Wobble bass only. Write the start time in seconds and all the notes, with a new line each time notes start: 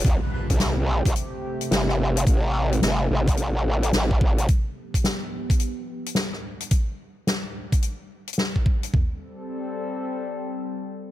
0.05 A1
0.50 C2
0.87 B1
1.06 C2
1.71 G1
2.27 A1
2.83 G1
3.10 A1
3.93 A1